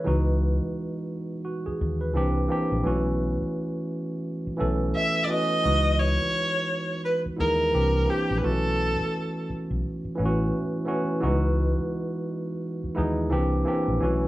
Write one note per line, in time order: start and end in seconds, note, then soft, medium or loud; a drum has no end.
0.00 0.24 B4 medium
0.04 0.57 C#2 medium
0.04 1.32 E3 medium
0.04 1.32 G#3 medium
0.04 1.33 B3 medium
0.04 1.33 D#4 medium
0.04 1.34 F#4 medium
0.63 muted fingered electric bass stroke soft
1.45 1.64 F#4 medium
1.66 1.99 G#4 medium
1.66 muted fingered electric bass stroke soft
1.81 2.16 D#2 medium
2.01 2.33 B4 medium
2.14 2.47 C2 loud
2.14 2.46 E3 medium
2.14 2.46 A#3 medium
2.14 2.47 C4 medium
2.14 2.47 D4 medium
2.14 2.47 G4 loud
2.48 2.80 E3 medium
2.48 2.81 A#3 medium
2.48 2.81 C4 medium
2.48 2.82 D4 medium
2.48 2.82 G4 medium
2.72 2.84 A#1 medium
2.84 3.36 B1 loud
2.84 4.11 E3 medium
2.84 4.12 A3 medium
2.84 4.12 B3 medium
2.84 4.12 C#4 medium
2.84 4.13 F#4 medium
3.42 muted fingered electric bass stroke soft
4.47 muted fingered electric bass stroke soft
4.57 5.21 E3 medium
4.57 5.22 A3 medium
4.57 5.22 B3 medium
4.57 5.23 C#4 medium
4.57 5.23 A4 medium
4.61 4.91 B1 medium
4.95 5.26 E5 loud
5.24 5.59 E3 medium
5.24 5.60 A3 medium
5.24 5.32 D5 medium
5.29 5.60 B3 medium
5.29 5.61 C#4 medium
5.29 5.61 F#4 medium
5.29 6.02 D#5 loud
5.62 6.16 C#2 loud
5.62 6.90 E3 medium
5.62 6.91 G#3 medium
5.62 6.91 B3 medium
5.62 6.91 D#4 medium
5.62 6.92 F#4 medium
6.00 7.03 C#5 loud
6.21 muted fingered electric bass stroke soft
7.05 7.20 B4 medium
7.26 muted fingered electric bass stroke soft
7.36 7.70 D#2 medium
7.36 7.72 G#3 medium
7.36 7.73 B3 medium
7.36 7.73 D#4 medium
7.36 7.72 E4 medium
7.36 7.73 G#4 medium
7.36 8.12 A#4 medium
7.71 8.05 C2 medium
7.71 8.04 E3 medium
7.71 8.04 A#3 medium
7.71 8.04 C4 medium
7.71 8.05 D4 medium
7.71 8.05 G4 medium
8.06 8.38 E3 medium
8.06 8.39 A#3 medium
8.06 8.39 C4 medium
8.06 8.40 D4 medium
8.06 8.40 G4 medium
8.31 8.42 A#1 medium
8.38 9.69 E3 medium
8.38 9.69 A3 medium
8.38 8.46 B4 medium
8.43 8.95 B1 loud
8.43 9.70 B3 medium
8.43 9.70 C#4 medium
8.43 9.71 F#4 medium
8.43 9.48 A4 medium
9.01 muted fingered electric bass stroke soft
9.50 muted fingered electric bass stroke soft
9.71 9.82 B1 medium
10.05 muted fingered electric bass stroke soft
10.16 10.50 A1 medium
10.16 10.80 E3 medium
10.16 10.80 A3 medium
10.16 10.81 B3 medium
10.16 10.81 C#4 medium
10.16 10.25 E4 medium
10.25 10.85 F#4 medium
10.85 11.17 E3 medium
10.85 11.18 A3 medium
10.85 11.18 B3 medium
10.85 11.19 C#4 medium
10.85 11.19 F#4 medium
11.20 11.74 C#2 loud
11.20 12.48 E3 medium
11.20 12.49 G#3 medium
11.20 12.49 B3 medium
11.20 12.49 D#4 medium
11.20 12.50 F#4 medium
11.79 muted fingered electric bass stroke soft
12.84 muted fingered electric bass stroke soft
12.95 13.32 D#2 medium
12.95 13.30 G#3 medium
12.95 13.31 B3 medium
12.95 13.31 D#4 medium
12.95 13.30 E4 medium
12.95 13.32 G#4 medium
13.29 13.63 C2 loud
13.29 13.62 E3 medium
13.29 13.62 A#3 medium
13.29 13.62 C4 medium
13.29 13.63 D4 medium
13.29 13.63 G4 loud
13.65 13.97 E3 medium
13.65 13.97 A#3 medium
13.65 13.98 C4 medium
13.65 13.98 D4 medium
13.65 13.98 G4 medium
13.88 14.00 A#1 medium
14.00 14.28 B1 loud
14.00 14.28 E3 medium
14.00 14.28 A3 medium
14.00 14.28 B3 medium
14.00 14.28 C#4 medium
14.00 14.28 F#4 medium